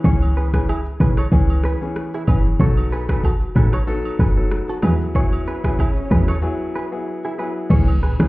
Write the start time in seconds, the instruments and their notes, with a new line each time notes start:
0.04 log drum bass C#2, grand piano E3 B3 C#4 G#4, clean electric guitar G#4 C#5, kick, shaker
0.22 high agogo, shaker
0.36 clean electric guitar G#4 B4, shaker
0.53 grand piano E3 B3 C#4 G#4, clean electric guitar G#4 B4, kick, cross-stick, shaker
0.68 clean electric guitar E4 G#4, high agogo, low woodblock, shaker
0.85 shaker
1.00 log drum bass B1, grand piano E3 B3 C#4 G#4, clean electric guitar G#4 B4, kick
1.17 clean electric guitar A4 C#5, cross-stick, high agogo, shaker
1.32 log drum bass C#2, grand piano E3 B3 C#4 G#4, kick, shaker
1.50 high agogo, shaker
1.64 clean electric guitar G#4 B4, cross-stick
1.81 grand piano E3 B3 C#4 G#4, shaker
1.96 cross-stick, shaker
2.14 clean electric guitar E4 G#4, shaker
2.27 log drum bass F#1, grand piano E3 B3 C#4 G#4, clean electric guitar G#4 B4, kick, high agogo
2.45 shaker
2.60 log drum bass B1, grand piano F#3 B3 D#4 A4, clean electric guitar A4 C#5, kick, swell, shaker
2.77 high agogo, shaker
2.92 clean electric guitar G#4 B4, shaker
3.09 grand piano F#3 B3 D#4 A4, clean electric guitar G#4 B4, kick, cross-stick, shaker
3.23 clean electric guitar F#4 A4, kick, high agogo, low woodblock, shaker
3.41 shaker
3.55 log drum bass A1, grand piano F#3 B3 D#4 A4, clean electric guitar G#4 B4, kick
3.72 clean electric guitar A4 C#5, cross-stick, high agogo, shaker
3.87 grand piano F#3 B3 D#4 A4, shaker
4.05 high agogo, shaker
4.19 log drum bass F#1, clean electric guitar G#4 B4, kick
4.36 grand piano F#3 B3 D#4 A4, shaker
4.51 cross-stick, shaker
4.69 clean electric guitar F#4 A4, shaker
4.82 log drum bass E2, grand piano F#3 B3 E4 G#4, clean electric guitar G#4 B4, cross-stick, high agogo
5.01 shaker
5.15 grand piano F#3 B3 E4 G#4, clean electric guitar G#4 C#5, kick, shaker
5.33 high agogo, shaker
5.47 clean electric guitar G#4 B4, shaker
5.64 grand piano F#3 B3 E4 G#4, clean electric guitar G#4 B4, kick, cross-stick, shaker
5.78 clean electric guitar E4 G#4, kick, high agogo, low woodblock, shaker
5.96 shaker
6.10 log drum bass E2, grand piano F#3 B3 E4 G#4, clean electric guitar G#4 B4, kick, shaker
6.28 clean electric guitar A4 C#5, cross-stick, high agogo, shaker
6.42 grand piano F#3 B3 E4 G#4
6.76 clean electric guitar G#4 B4
6.92 grand piano F#3 B3 E4 G#4
7.25 clean electric guitar E4 G#4
7.38 grand piano F#3 B3 E4 G#4, clean electric guitar G#4 B4
7.70 log drum bass C#2, grand piano E3 B3 C#4 G#4, clean electric guitar G#4 C#5, kick, crash, impact, shaker
7.88 high agogo, shaker
8.02 clean electric guitar G#4 B4, shaker
8.19 log drum bass C#2, grand piano E3 B3 C#4 G#4, clean electric guitar G#4 B4, cross-stick, shaker